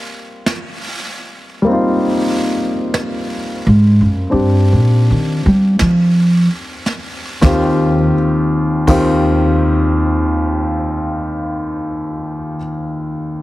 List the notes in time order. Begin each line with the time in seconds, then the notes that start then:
Already playing: G3 A#3 C4 F4 D#5
0.46 brush sweep, snare
1.62 G3 A#3
1.66 C4 D#4, brush sweep
1.73 F4
2.94 brush sweep, snare
3.67 G#2
4.01 F#2
4.30 G2 C4 D4 G4, brush sweep
4.73 A#2
5.10 D#3
5.46 G3
5.79 F3, brush sweep, snare
6.86 snare
7.41 D#2 D#3 C4 F4 G4, kick, snare
8.87 D#2 D#3 C4 F4 G4, kick, crash